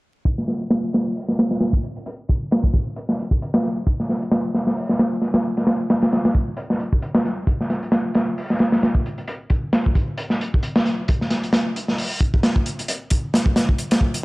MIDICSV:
0, 0, Header, 1, 2, 480
1, 0, Start_track
1, 0, Tempo, 451128
1, 271, Time_signature, 4, 2, 24, 8
1, 15159, End_track
2, 0, Start_track
2, 0, Title_t, "Drums"
2, 269, Note_on_c, 9, 36, 107
2, 276, Note_on_c, 9, 42, 84
2, 376, Note_off_c, 9, 36, 0
2, 382, Note_off_c, 9, 42, 0
2, 405, Note_on_c, 9, 38, 33
2, 508, Note_off_c, 9, 38, 0
2, 508, Note_on_c, 9, 38, 42
2, 513, Note_on_c, 9, 42, 65
2, 615, Note_off_c, 9, 38, 0
2, 620, Note_off_c, 9, 42, 0
2, 639, Note_on_c, 9, 42, 39
2, 746, Note_off_c, 9, 42, 0
2, 747, Note_on_c, 9, 42, 82
2, 749, Note_on_c, 9, 38, 111
2, 853, Note_off_c, 9, 42, 0
2, 856, Note_off_c, 9, 38, 0
2, 989, Note_on_c, 9, 42, 76
2, 1002, Note_on_c, 9, 38, 87
2, 1096, Note_off_c, 9, 42, 0
2, 1108, Note_off_c, 9, 38, 0
2, 1231, Note_on_c, 9, 46, 75
2, 1337, Note_off_c, 9, 46, 0
2, 1366, Note_on_c, 9, 38, 51
2, 1462, Note_on_c, 9, 42, 73
2, 1473, Note_off_c, 9, 38, 0
2, 1478, Note_on_c, 9, 38, 96
2, 1569, Note_off_c, 9, 42, 0
2, 1584, Note_off_c, 9, 38, 0
2, 1605, Note_on_c, 9, 38, 85
2, 1605, Note_on_c, 9, 42, 68
2, 1708, Note_off_c, 9, 38, 0
2, 1708, Note_on_c, 9, 38, 91
2, 1711, Note_off_c, 9, 42, 0
2, 1715, Note_on_c, 9, 42, 67
2, 1814, Note_off_c, 9, 38, 0
2, 1822, Note_off_c, 9, 42, 0
2, 1841, Note_on_c, 9, 36, 90
2, 1948, Note_off_c, 9, 36, 0
2, 1953, Note_on_c, 9, 42, 66
2, 2060, Note_off_c, 9, 42, 0
2, 2086, Note_on_c, 9, 42, 41
2, 2192, Note_off_c, 9, 42, 0
2, 2192, Note_on_c, 9, 42, 86
2, 2299, Note_off_c, 9, 42, 0
2, 2433, Note_on_c, 9, 42, 61
2, 2440, Note_on_c, 9, 36, 86
2, 2539, Note_off_c, 9, 42, 0
2, 2547, Note_off_c, 9, 36, 0
2, 2674, Note_on_c, 9, 42, 79
2, 2683, Note_on_c, 9, 38, 111
2, 2780, Note_off_c, 9, 42, 0
2, 2789, Note_off_c, 9, 38, 0
2, 2804, Note_on_c, 9, 36, 96
2, 2910, Note_off_c, 9, 36, 0
2, 2912, Note_on_c, 9, 36, 92
2, 2917, Note_on_c, 9, 42, 68
2, 3018, Note_off_c, 9, 36, 0
2, 3023, Note_off_c, 9, 42, 0
2, 3152, Note_on_c, 9, 42, 81
2, 3258, Note_off_c, 9, 42, 0
2, 3285, Note_on_c, 9, 38, 46
2, 3391, Note_off_c, 9, 38, 0
2, 3399, Note_on_c, 9, 42, 68
2, 3505, Note_off_c, 9, 42, 0
2, 3524, Note_on_c, 9, 36, 91
2, 3630, Note_off_c, 9, 36, 0
2, 3641, Note_on_c, 9, 42, 76
2, 3747, Note_off_c, 9, 42, 0
2, 3765, Note_on_c, 9, 38, 108
2, 3868, Note_off_c, 9, 38, 0
2, 3868, Note_on_c, 9, 38, 44
2, 3868, Note_on_c, 9, 42, 59
2, 3974, Note_off_c, 9, 38, 0
2, 3974, Note_off_c, 9, 42, 0
2, 4114, Note_on_c, 9, 42, 86
2, 4115, Note_on_c, 9, 36, 100
2, 4220, Note_off_c, 9, 42, 0
2, 4221, Note_off_c, 9, 36, 0
2, 4253, Note_on_c, 9, 38, 34
2, 4356, Note_off_c, 9, 38, 0
2, 4356, Note_on_c, 9, 38, 43
2, 4361, Note_on_c, 9, 42, 67
2, 4463, Note_off_c, 9, 38, 0
2, 4468, Note_off_c, 9, 42, 0
2, 4488, Note_on_c, 9, 42, 45
2, 4590, Note_on_c, 9, 38, 106
2, 4594, Note_off_c, 9, 42, 0
2, 4599, Note_on_c, 9, 42, 86
2, 4697, Note_off_c, 9, 38, 0
2, 4706, Note_off_c, 9, 42, 0
2, 4835, Note_on_c, 9, 38, 52
2, 4840, Note_on_c, 9, 42, 65
2, 4941, Note_off_c, 9, 38, 0
2, 4947, Note_off_c, 9, 42, 0
2, 4968, Note_on_c, 9, 38, 47
2, 5072, Note_on_c, 9, 46, 77
2, 5074, Note_off_c, 9, 38, 0
2, 5179, Note_off_c, 9, 46, 0
2, 5207, Note_on_c, 9, 38, 56
2, 5313, Note_off_c, 9, 38, 0
2, 5313, Note_on_c, 9, 38, 101
2, 5322, Note_on_c, 9, 42, 78
2, 5419, Note_off_c, 9, 38, 0
2, 5428, Note_off_c, 9, 42, 0
2, 5549, Note_on_c, 9, 38, 45
2, 5555, Note_on_c, 9, 42, 60
2, 5656, Note_off_c, 9, 38, 0
2, 5661, Note_off_c, 9, 42, 0
2, 5681, Note_on_c, 9, 38, 107
2, 5686, Note_on_c, 9, 42, 85
2, 5788, Note_off_c, 9, 38, 0
2, 5792, Note_off_c, 9, 42, 0
2, 5926, Note_on_c, 9, 42, 58
2, 5932, Note_on_c, 9, 38, 49
2, 6030, Note_off_c, 9, 38, 0
2, 6030, Note_on_c, 9, 38, 95
2, 6033, Note_off_c, 9, 42, 0
2, 6034, Note_on_c, 9, 42, 82
2, 6137, Note_off_c, 9, 38, 0
2, 6141, Note_off_c, 9, 42, 0
2, 6275, Note_on_c, 9, 42, 73
2, 6278, Note_on_c, 9, 38, 103
2, 6381, Note_off_c, 9, 42, 0
2, 6384, Note_off_c, 9, 38, 0
2, 6404, Note_on_c, 9, 42, 76
2, 6411, Note_on_c, 9, 38, 102
2, 6511, Note_off_c, 9, 42, 0
2, 6514, Note_on_c, 9, 42, 73
2, 6517, Note_off_c, 9, 38, 0
2, 6520, Note_on_c, 9, 38, 90
2, 6621, Note_off_c, 9, 42, 0
2, 6626, Note_off_c, 9, 38, 0
2, 6648, Note_on_c, 9, 42, 66
2, 6650, Note_on_c, 9, 38, 94
2, 6749, Note_off_c, 9, 42, 0
2, 6749, Note_on_c, 9, 42, 67
2, 6753, Note_on_c, 9, 36, 98
2, 6756, Note_off_c, 9, 38, 0
2, 6855, Note_off_c, 9, 42, 0
2, 6859, Note_off_c, 9, 36, 0
2, 6987, Note_on_c, 9, 42, 79
2, 7093, Note_off_c, 9, 42, 0
2, 7129, Note_on_c, 9, 38, 50
2, 7233, Note_on_c, 9, 42, 62
2, 7236, Note_off_c, 9, 38, 0
2, 7339, Note_off_c, 9, 42, 0
2, 7369, Note_on_c, 9, 36, 85
2, 7473, Note_on_c, 9, 42, 80
2, 7476, Note_off_c, 9, 36, 0
2, 7579, Note_off_c, 9, 42, 0
2, 7603, Note_on_c, 9, 38, 119
2, 7710, Note_off_c, 9, 38, 0
2, 7717, Note_on_c, 9, 38, 44
2, 7718, Note_on_c, 9, 42, 60
2, 7823, Note_off_c, 9, 38, 0
2, 7825, Note_off_c, 9, 42, 0
2, 7950, Note_on_c, 9, 36, 103
2, 7953, Note_on_c, 9, 42, 76
2, 8056, Note_off_c, 9, 36, 0
2, 8059, Note_off_c, 9, 42, 0
2, 8093, Note_on_c, 9, 38, 37
2, 8192, Note_on_c, 9, 42, 64
2, 8193, Note_off_c, 9, 38, 0
2, 8193, Note_on_c, 9, 38, 38
2, 8299, Note_off_c, 9, 38, 0
2, 8299, Note_off_c, 9, 42, 0
2, 8328, Note_on_c, 9, 42, 46
2, 8425, Note_on_c, 9, 38, 108
2, 8429, Note_off_c, 9, 42, 0
2, 8429, Note_on_c, 9, 42, 88
2, 8531, Note_off_c, 9, 38, 0
2, 8536, Note_off_c, 9, 42, 0
2, 8666, Note_on_c, 9, 42, 78
2, 8674, Note_on_c, 9, 38, 95
2, 8772, Note_off_c, 9, 42, 0
2, 8781, Note_off_c, 9, 38, 0
2, 8914, Note_on_c, 9, 46, 83
2, 9020, Note_off_c, 9, 46, 0
2, 9046, Note_on_c, 9, 38, 52
2, 9141, Note_on_c, 9, 42, 75
2, 9151, Note_off_c, 9, 38, 0
2, 9151, Note_on_c, 9, 38, 90
2, 9247, Note_off_c, 9, 42, 0
2, 9258, Note_off_c, 9, 38, 0
2, 9281, Note_on_c, 9, 38, 94
2, 9291, Note_on_c, 9, 42, 75
2, 9387, Note_off_c, 9, 38, 0
2, 9393, Note_off_c, 9, 42, 0
2, 9393, Note_on_c, 9, 42, 78
2, 9397, Note_on_c, 9, 38, 102
2, 9499, Note_off_c, 9, 42, 0
2, 9503, Note_off_c, 9, 38, 0
2, 9521, Note_on_c, 9, 36, 93
2, 9627, Note_off_c, 9, 36, 0
2, 9638, Note_on_c, 9, 42, 64
2, 9745, Note_off_c, 9, 42, 0
2, 9765, Note_on_c, 9, 42, 42
2, 9869, Note_off_c, 9, 42, 0
2, 9869, Note_on_c, 9, 42, 88
2, 9976, Note_off_c, 9, 42, 0
2, 10106, Note_on_c, 9, 42, 62
2, 10112, Note_on_c, 9, 36, 91
2, 10212, Note_off_c, 9, 42, 0
2, 10218, Note_off_c, 9, 36, 0
2, 10350, Note_on_c, 9, 38, 113
2, 10350, Note_on_c, 9, 42, 84
2, 10457, Note_off_c, 9, 38, 0
2, 10457, Note_off_c, 9, 42, 0
2, 10494, Note_on_c, 9, 36, 94
2, 10589, Note_on_c, 9, 42, 59
2, 10590, Note_off_c, 9, 36, 0
2, 10590, Note_on_c, 9, 36, 98
2, 10695, Note_off_c, 9, 42, 0
2, 10697, Note_off_c, 9, 36, 0
2, 10826, Note_on_c, 9, 42, 88
2, 10932, Note_off_c, 9, 42, 0
2, 10960, Note_on_c, 9, 38, 47
2, 11066, Note_off_c, 9, 38, 0
2, 11078, Note_on_c, 9, 42, 72
2, 11184, Note_off_c, 9, 42, 0
2, 11216, Note_on_c, 9, 36, 83
2, 11307, Note_on_c, 9, 42, 81
2, 11322, Note_off_c, 9, 36, 0
2, 11414, Note_off_c, 9, 42, 0
2, 11445, Note_on_c, 9, 38, 117
2, 11546, Note_off_c, 9, 38, 0
2, 11546, Note_on_c, 9, 38, 46
2, 11551, Note_on_c, 9, 42, 64
2, 11653, Note_off_c, 9, 38, 0
2, 11658, Note_off_c, 9, 42, 0
2, 11791, Note_on_c, 9, 42, 77
2, 11798, Note_on_c, 9, 36, 113
2, 11897, Note_off_c, 9, 42, 0
2, 11905, Note_off_c, 9, 36, 0
2, 11931, Note_on_c, 9, 38, 37
2, 12027, Note_on_c, 9, 42, 66
2, 12029, Note_off_c, 9, 38, 0
2, 12029, Note_on_c, 9, 38, 42
2, 12134, Note_off_c, 9, 42, 0
2, 12135, Note_off_c, 9, 38, 0
2, 12167, Note_on_c, 9, 42, 39
2, 12264, Note_on_c, 9, 38, 117
2, 12273, Note_off_c, 9, 42, 0
2, 12274, Note_on_c, 9, 42, 92
2, 12370, Note_off_c, 9, 38, 0
2, 12380, Note_off_c, 9, 42, 0
2, 12514, Note_on_c, 9, 42, 64
2, 12621, Note_off_c, 9, 42, 0
2, 12644, Note_on_c, 9, 38, 45
2, 12749, Note_on_c, 9, 46, 80
2, 12750, Note_off_c, 9, 38, 0
2, 12856, Note_off_c, 9, 46, 0
2, 12987, Note_on_c, 9, 36, 90
2, 12989, Note_on_c, 9, 42, 66
2, 13093, Note_off_c, 9, 36, 0
2, 13095, Note_off_c, 9, 42, 0
2, 13128, Note_on_c, 9, 36, 96
2, 13228, Note_on_c, 9, 38, 112
2, 13229, Note_on_c, 9, 42, 76
2, 13234, Note_off_c, 9, 36, 0
2, 13335, Note_off_c, 9, 38, 0
2, 13336, Note_off_c, 9, 42, 0
2, 13363, Note_on_c, 9, 36, 83
2, 13469, Note_off_c, 9, 36, 0
2, 13469, Note_on_c, 9, 42, 62
2, 13576, Note_off_c, 9, 42, 0
2, 13609, Note_on_c, 9, 42, 39
2, 13708, Note_off_c, 9, 42, 0
2, 13708, Note_on_c, 9, 42, 82
2, 13815, Note_off_c, 9, 42, 0
2, 13942, Note_on_c, 9, 42, 66
2, 13953, Note_on_c, 9, 36, 82
2, 14049, Note_off_c, 9, 42, 0
2, 14059, Note_off_c, 9, 36, 0
2, 14192, Note_on_c, 9, 38, 115
2, 14205, Note_on_c, 9, 42, 84
2, 14298, Note_off_c, 9, 38, 0
2, 14311, Note_off_c, 9, 42, 0
2, 14319, Note_on_c, 9, 36, 97
2, 14425, Note_off_c, 9, 36, 0
2, 14427, Note_on_c, 9, 38, 102
2, 14433, Note_on_c, 9, 42, 73
2, 14533, Note_off_c, 9, 38, 0
2, 14539, Note_off_c, 9, 42, 0
2, 14565, Note_on_c, 9, 36, 82
2, 14666, Note_on_c, 9, 42, 58
2, 14671, Note_off_c, 9, 36, 0
2, 14773, Note_off_c, 9, 42, 0
2, 14801, Note_on_c, 9, 42, 81
2, 14809, Note_on_c, 9, 38, 96
2, 14906, Note_on_c, 9, 36, 80
2, 14907, Note_off_c, 9, 42, 0
2, 14915, Note_off_c, 9, 38, 0
2, 15013, Note_off_c, 9, 36, 0
2, 15047, Note_on_c, 9, 42, 62
2, 15153, Note_off_c, 9, 42, 0
2, 15159, End_track
0, 0, End_of_file